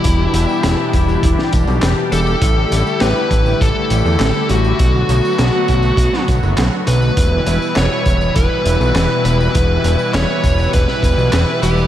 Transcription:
0.00 2.38 B2 medium
0.00 2.38 E3 medium
0.00 4.76 G3 medium
0.00 1.49 E4 medium
0.00 4.76 G4 medium
0.04 0.28 E1 loud
0.04 2.40 D4 medium
0.04 kick loud
0.04 closed hi-hat loud
0.34 0.46 E1 medium
0.34 closed hi-hat medium
0.34 tambourine medium
0.49 tambourine soft
0.64 0.76 E1 medium
0.64 snare loud
0.64 clap medium
0.64 closed hi-hat loud
0.93 1.17 E1 medium
0.93 kick loud
0.93 closed hi-hat medium
0.93 tambourine medium
1.08 tambourine soft
1.23 1.35 E1 medium
1.23 kick loud
1.23 closed hi-hat loud
1.23 tambourine soft
1.39 snare soft
1.53 1.65 E1 medium
1.53 kick loud
1.53 closed hi-hat medium
1.53 tambourine medium
1.67 1.79 B1 loud
1.67 tambourine soft
1.82 1.94 E1 loud
1.82 snare loud
1.82 clap loud
1.82 closed hi-hat loud
2.12 2.36 E1 medium
2.12 3.04 A4 loud
2.12 closed hi-hat medium
2.12 tambourine medium
2.27 tambourine soft
2.42 2.66 A1 loud
2.42 7.13 D3 medium
2.42 7.13 A3 medium
2.42 4.77 E4 medium
2.42 kick loud
2.42 closed hi-hat loud
2.42 tambourine soft
2.72 2.83 A1 medium
2.72 closed hi-hat medium
2.72 tambourine medium
2.87 tambourine soft
3.01 3.13 A1 medium
3.01 3.63 B4 loud
3.01 snare loud
3.01 clap medium
3.01 closed hi-hat loud
3.31 3.55 A1 medium
3.31 kick loud
3.31 closed hi-hat medium
3.31 tambourine medium
3.46 tambourine soft
3.61 3.73 A1 medium
3.61 4.50 A4 loud
3.61 kick loud
3.61 closed hi-hat medium
3.61 tambourine soft
3.90 4.02 A1 medium
3.90 closed hi-hat medium
3.90 tambourine medium
4.05 4.17 E2 medium
4.05 tambourine soft
4.20 4.32 A1 loud
4.20 snare loud
4.20 clap loud
4.20 closed hi-hat loud
4.49 4.74 A1 medium
4.49 6.24 F#4 medium
4.49 closed hi-hat medium
4.49 tambourine medium
4.64 tambourine soft
4.79 5.03 B1 loud
4.79 7.15 F#3 medium
4.79 7.15 B3 medium
4.79 7.15 F#4 medium
4.79 kick loud
4.79 closed hi-hat loud
5.09 5.21 B1 medium
5.09 closed hi-hat medium
5.09 tambourine medium
5.25 tambourine soft
5.39 5.51 B1 medium
5.39 snare loud
5.39 clap medium
5.39 closed hi-hat medium
5.68 5.92 B1 loud
5.68 kick loud
5.68 closed hi-hat medium
5.68 tambourine medium
5.82 tambourine soft
5.97 6.10 B1 medium
5.97 kick loud
5.97 closed hi-hat loud
5.97 tambourine soft
6.13 snare soft
6.28 6.40 B1 medium
6.28 kick loud
6.28 closed hi-hat medium
6.28 tambourine medium
6.43 6.55 F#1 loud
6.43 tambourine soft
6.57 6.70 B1 loud
6.57 snare loud
6.57 clap medium
6.57 closed hi-hat loud
6.87 7.11 B1 medium
6.87 7.76 B4 loud
6.87 closed hi-hat medium
6.87 tambourine medium
7.02 tambourine soft
7.17 7.41 E1 loud
7.17 11.87 B2 medium
7.17 11.87 E3 medium
7.17 11.87 G3 medium
7.17 11.87 E4 medium
7.17 11.87 B4 medium
7.17 kick loud
7.17 closed hi-hat loud
7.17 tambourine soft
7.47 7.59 E1 medium
7.47 closed hi-hat medium
7.47 tambourine medium
7.62 tambourine soft
7.76 7.88 E1 medium
7.76 8.36 C#5 loud
7.76 snare loud
7.76 clap loud
7.76 closed hi-hat medium
7.76 tambourine soft
8.06 8.30 E1 medium
8.06 kick loud
8.06 closed hi-hat medium
8.06 tambourine medium
8.21 tambourine soft
8.36 8.48 E1 medium
8.36 9.24 B4 loud
8.36 kick loud
8.36 closed hi-hat medium
8.66 8.78 E1 medium
8.66 closed hi-hat medium
8.66 tambourine medium
8.81 8.92 B1 loud
8.81 tambourine soft
8.95 9.07 E1 loud
8.95 snare loud
8.95 clap loud
8.95 closed hi-hat medium
9.25 9.49 E1 medium
9.25 10.14 B4 loud
9.25 closed hi-hat medium
9.25 tambourine medium
9.41 tambourine soft
9.55 9.79 E1 loud
9.55 kick loud
9.55 closed hi-hat loud
9.84 9.96 E1 medium
9.84 closed hi-hat medium
9.84 tambourine medium
9.99 tambourine soft
10.14 10.26 E1 medium
10.14 10.70 C#5 loud
10.14 snare loud
10.14 clap medium
10.14 closed hi-hat medium
10.44 10.67 E1 loud
10.44 kick loud
10.44 closed hi-hat medium
10.44 tambourine medium
10.58 tambourine soft
10.73 10.86 E1 medium
10.73 11.59 B4 loud
10.73 kick loud
10.73 closed hi-hat medium
10.73 tambourine soft
10.88 snare soft
11.03 11.15 E1 medium
11.03 kick loud
11.03 closed hi-hat medium
11.03 tambourine medium
11.18 11.30 B1 medium
11.18 tambourine soft
11.33 11.45 E1 loud
11.33 snare loud
11.33 clap loud
11.33 closed hi-hat loud
11.33 tambourine soft
11.63 11.86 E1 medium
11.63 11.87 G4 loud
11.63 closed hi-hat medium
11.63 tambourine medium
11.77 tambourine soft

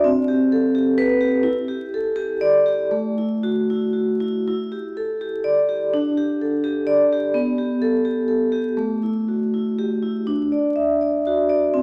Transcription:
0.04 1.40 C4 medium
0.28 0.65 G4 medium
0.52 0.74 A4 medium
0.75 1.11 G4 medium
0.98 1.35 B4 medium
1.21 1.44 G4 medium
1.43 2.86 E4 medium
1.68 2.06 G4 medium
1.94 2.17 A4 medium
2.16 2.55 G4 medium
2.41 2.81 D5 medium
2.66 2.91 G4 medium
2.91 4.43 A3 medium
3.18 3.59 E4 soft
3.43 3.69 F#4 medium
3.70 4.11 E4 medium
3.93 4.35 F#4 soft
4.20 4.46 E4 soft
4.48 5.88 E4 medium
4.72 5.10 G4 soft
4.97 5.20 A4 soft
5.21 5.58 G4 soft
5.44 5.82 D5 medium
5.69 5.92 G4 medium
5.93 7.31 D4 medium
6.17 6.54 G4 medium
6.42 6.64 A4 soft
6.64 7.01 G4 medium
6.87 7.25 D5 medium
7.13 7.35 G4 medium
7.34 8.73 B3 medium
7.58 7.95 G4 medium
7.82 8.05 A4 medium
8.05 8.43 G4 medium
8.28 8.67 A4 medium
8.52 8.77 G4 medium
8.77 10.23 A3 medium
9.03 9.43 E4 soft
9.28 9.53 F#4 soft
9.54 9.93 E4 soft
9.79 10.18 G4 medium
10.03 10.27 E4 soft
10.27 11.69 D4 medium
10.52 10.90 D5 soft
10.76 11.00 E5 medium
11.01 11.39 D5 soft
11.27 11.64 F#4 medium
11.49 11.73 D5 medium
11.74 11.82 C4 medium

